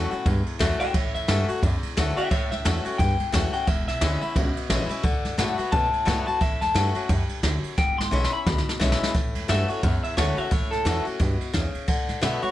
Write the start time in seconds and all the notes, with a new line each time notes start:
Already playing: A2 E3 A3 C#4
0.11 C#4 F#4, muted upright bass stroke, ride
0.25 E2 G2, kick, ride
0.46 muted upright bass stroke, ride
0.59 E2 E3 A3 C#4 F#4, kick, snare, ride
0.80 C#4 F#4 E5 G5, muted upright bass stroke, ride
0.94 A1 A2 C#5 E5, kick, ride
1.14 E2 E5, ride
1.28 G2 E3 A3 C#4 F#4, snare, ride
1.48 C#4 F#4, muted upright bass stroke, ride
1.62 E2 F#2, kick, ride
1.83 muted upright bass stroke, ride
1.97 D2 E3 A3 C#4 F#4, snare, ride
2.17 C#4 F#4 E5 G5, ride
2.31 A1 A2 C#5 E5, kick, ride
2.51 C#2 E5, snare, ride
2.65 E2 E3 A3 C#4 F#4, snare, ride
2.85 C#4 F#4, muted upright bass stroke, ride
2.98 E2 G2 G5, kick, ride
3.20 muted upright bass stroke, ride
3.32 E2 E3 A3 C#4 F#4, kick, snare, ride
3.53 C#4 F#4 G5, muted upright bass stroke, ride
3.67 E1 E2 E5, kick, ride
3.87 B1 E5, snare, ride
4.01 D2 E3 G#3 C#4 E4, snare, ride
4.21 C#4 E4, muted upright bass stroke, ride
4.35 C#2 B2, kick, ride
4.56 muted upright bass stroke, ride
4.69 A1 E3 G#3 C#4 E4, snare, ride
4.89 C#4 E4, muted upright bass stroke, ride
5.03 D2 D3, kick, ride
5.25 F#2, snare, ride
5.38 A2 D3 A3 B3 F#4, snare, ride
5.58 B3 F#4, muted upright bass stroke, ride
5.72 A2 B2 A5, kick, ride
5.93 muted upright bass stroke, ride
6.05 A2 D3 A3 B3 F#4, kick, snare, ride
6.26 B3 F#4 A5, muted upright bass stroke, ride
6.41 A1 A2 E5, kick, ride
6.61 E2 A5, snare, ride
6.74 G2 E3 A3 C#4 F#4, snare, ride
6.95 C#4 F#4, muted upright bass stroke, ride
7.09 F#2 G2, kick, ride
7.29 muted upright bass stroke, ride
7.43 D2 F#2, snare, ride
7.64 ride
7.78 E1 E2 G5, kick, snare
7.98 G#1 C6, snare
8.11 B1 E3 G#3 C#4 E4
8.24 snare
8.32 C#4 E4 B5
8.46 D2 B2, kick, snare
8.58 snare
8.66 muted upright bass stroke, snare
8.80 B1 E3 G#3 C#4 E4, kick, snare
8.92 snare
9.01 muted upright bass stroke, snare
9.14 A1 A2, kick, snare, ride
9.35 E2, ride
9.48 G2 E3 A3 C#4 F#4 E5, snare, ride
9.68 C#4 F#4 C#5, muted upright bass stroke, ride
9.83 E2 F#2, kick, ride
10.04 E5, muted upright bass stroke, ride
10.17 D2 E3 A3 C#4 F#4 C#5, snare, ride
10.37 C#4 F#4 E5, muted upright bass stroke, ride
10.51 A1 A2 C#5, kick, snare, ride
10.71 C#2 A4, snare, ride
10.85 E2 E3 A3 C#4 F#4, snare, ride
11.05 C#4 F#4, muted upright bass stroke, ride
11.20 G2 B2, kick, snare, ride
11.40 muted upright bass stroke, ride
11.53 E2 C#3, kick, snare, ride
11.74 muted upright bass stroke, ride
11.88 D2 D3, kick, ride
12.09 A2, snare, ride
12.21 B2 D3 A3 B3 F#4 E5, snare, ride
12.42 B3 F#4 C#5, muted upright bass stroke, ride